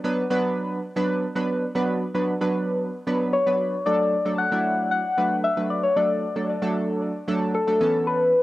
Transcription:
0.04 F#3 B3 D4 B4
0.30 F#3 B3 D4 B4
0.96 F#3 B3 D4 B4
1.35 F#3 B3 D4 B4
1.75 F#3 B3 D4 B4
2.14 F#3 B3 D4 B4
2.41 F#3 B3 D4 B4
3.07 F#3 B3 D4 B4
3.33 C#5
3.46 F#3 B3 D4 B4
3.86 F#3 A3 D4 A4 D5
4.25 F#3 A3 D4 A4
4.38 F#5
4.51 F#3 A3 D4 E4
4.91 F#5
5.17 F#3 A3 D4 B4
5.44 E5
5.57 F#3 A3 D4 B4
5.70 D5
5.83 C#5
5.96 F#3 A3 D4 A4 D5
6.36 F#3 A3 D4 A4
6.62 F#3 A3 D4 A4
7.28 F#3 A3 D4 A4
7.55 A4
7.67 F#3 A3 D4 A4
7.80 E3 B3 C#4 A4
8.07 B4

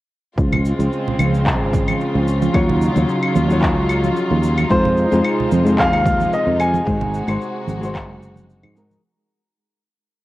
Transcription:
0.37 C#2 C#3 G#3 C4 F4, kick, shaker
0.53 muted conga, low conga, claves
0.65 shaker
0.79 C#2, muted conga, shaker
0.93 shaker
1.08 low conga
1.19 C#2, high conga, claves, shaker
1.34 shaker
1.46 kick, clap, shaker
1.61 G#1
1.73 kick, muted conga, shaker
1.88 high conga, claves, shaker
2.00 shaker
2.15 C#2, high conga
2.28 shaker
2.42 muted conga, high conga, shaker
2.53 D#2 F#3 D#4 F4 C#5, kick, claves, shaker
2.69 muted conga, low conga
2.82 shaker
2.95 D#2 F#3 D#4 F4 C#5, muted conga, shaker
3.09 shaker
3.23 claves
3.35 D#2, high conga, shaker
3.48 F#3 D#4 F4, shaker
3.52 C#5
3.62 kick, clap, shaker
3.77 C#2
3.89 claves, shaker
4.04 high conga, shaker
4.16 shaker
4.31 D#2, high conga
4.43 shaker
4.58 high conga, claves, shaker
4.70 F2 C3 G#3 D#4 F4 C5, kick, shaker
4.85 muted conga, low conga
4.97 shaker
5.11 F2 G#3 D#4 F4 C5, muted conga, shaker
5.24 claves, shaker
5.40 low conga
5.52 F2, high conga, shaker
5.63 G#3 D#4 F4, shaker
5.68 C5
5.79 F5, kick, clap, shaker
5.93 D#2, claves
6.06 kick, muted conga, shaker
6.20 high conga, shaker
6.33 D#5, shaker
6.47 F2, high conga
6.60 G#5, claves, shaker
6.74 muted conga, high conga, shaker
6.85 G#1 G#3 D#4 F#4 C5, kick, shaker
7.01 muted conga, low conga
7.14 shaker
7.27 G#1 G#3 D#4 F#4 C5, muted conga, claves, shaker
7.41 shaker
7.67 G#1, high conga, shaker
7.81 G#3 D#4 F#4, shaker
7.85 C5
7.95 kick, clap, claves, shaker
8.09 F#1
8.23 shaker
8.36 high conga, shaker
8.50 shaker
8.63 G#2, high conga, claves
8.75 G#3 D#4 F#4 A#4, shaker
8.91 high conga, shaker

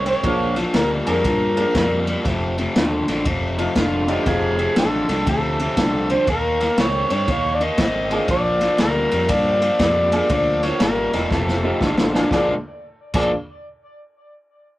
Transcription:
Already playing: C2
0.06 D#3 C4 C#5, ride
0.23 A#1 A#2 F3 G#3 A#3 D4 F4, kick, ride
0.56 A#2 F3, snare, ride
0.74 D2 A#2 G3 A#4, snare, ride
1.05 F2 A#2 F3 G3 G#3 A#3 D4 G#4 A#4, ride
1.24 G2 A#2 F3, kick, snare, ride
1.56 A#2 F3 G#3 A#3 D4 F4, ride
1.75 F2 A#2 G3, kick, snare, ride
2.07 A#2 G3, ride
2.25 F1 F2 C3, kick, snare, ride
2.58 F2 C3, ride
2.76 D#2 F2 D3, snare, ride
3.08 A1 F2 D3, snare, ride
3.25 F1 F2 C3, kick, ride
3.58 F2 C3 F3 A3 C4 D#4 F4, ride
3.75 F1 F2 D3 F4, kick, snare, ride
4.07 F2 D3 F3 A3 C4 D#4 F4 G4, ride
4.23 F1 F2 C3 F3 A3 C4 D#4 F4 G4, kick, snare, ride
4.28 G#4
4.59 F2 C3, ride
4.76 A1 F2 D3 A4, snare, ride
5.09 C2 F2 D3, snare, ride
5.27 D2 F2 C3 A4, kick, ride
5.59 F2 C3, ride
5.77 C2 F2 D3, kick, snare, ride
6.10 F2 D3 C5, ride
6.27 D#2 D#3 A#3 A#4, kick, ride
6.60 D#3 A#3, snare, ride
6.78 C#2 D#3 C4 C#5, snare, ride
7.10 G2 D#3 C4 C#5, ride
7.28 D#2 D#3 A#3 C#5, kick, snare, ride
7.54 D5
7.61 D#3 A#3 D#5, ride
7.78 G#1 D#3 C4, kick, snare, ride
8.10 D#3 G#3 A#3 C4 D4 F4 G#4, ride
8.28 A#1 A#2 F3 D5, kick, snare, ride
8.61 A#2 F3, snare, ride
8.78 D2 A#2 G3 A#4, snare, ride
9.11 F2 A#2 G3, ride
9.29 G2 A#2 F3 D5, kick, snare, ride
9.62 A#2 F3, ride
9.79 F2 A#2 G3, kick, snare, ride
10.12 A#2 G3 G#3 A#3 D4 F4 G#4, ride
10.29 D2 A#2 F3 D5, kick, ride
10.63 A#2 F3 C#5, snare, ride
10.80 G#1 A#2 G3 A#4, snare, ride
11.13 E1 A#2 G3 A3 C4 D#4 F4 A4, snare, ride
11.31 F1 F2 C3 A4, kick, snare
11.48 snare
11.63 F2 C3 A3 C4 D#4 F4 G4
11.81 A1 F2 D3, kick, snare
11.98 snare
12.13 F2 D3 G#3 A#3 D4 F4 G#4, snare
12.31 A#1 A#2 F3 G#3 A#3 D4 F4 G#4 D5, kick, snare
13.14 A#1 A#2 F3 G#3 A#3 D4 F4 G#4 D5, kick, crash

